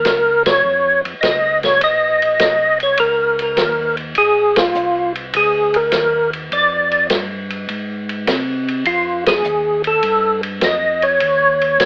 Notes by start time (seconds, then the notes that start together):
Already playing: A#4
0.05 C#2, snare, hi-hat pedal, ride
0.46 C#5, snare, ride
0.64 F2
1.05 F2, ride
1.21 C#2 D#5, snare, hi-hat pedal, ride
1.63 C#5, snare, ride
1.81 A#1 D#5, ride
2.22 ride
2.39 C2, snare, hi-hat pedal, ride
2.80 C#5, ride
2.97 C#2 A#4, ride
3.39 A#4, ride
3.57 D#2, snare, hi-hat pedal, ride
3.97 ride
4.15 A#1 G#4, ride
4.56 F4, snare, ride
4.75 C2, hi-hat pedal
5.15 ride
5.33 D2 G#4, ride
5.74 A#4, ride
5.92 D#2, snare, hi-hat pedal, ride
6.33 ride
6.52 F2 D5, ride
6.92 ride
7.10 G2, snare, hi-hat pedal, ride
7.50 ride
7.69 G#2, ride
8.09 ride
8.27 C3, snare, hi-hat pedal, ride
8.68 ride
8.85 F2 F4, ride
9.26 G#4, snare, ride
9.44 D#2, hi-hat pedal
9.84 A4, ride
10.03 G2, ride
10.43 ride
10.61 F2 D#5, snare, hi-hat pedal, ride
11.02 C#5, ride
11.20 D#2, ride
11.61 ride
11.80 C2, snare, hi-hat pedal, ride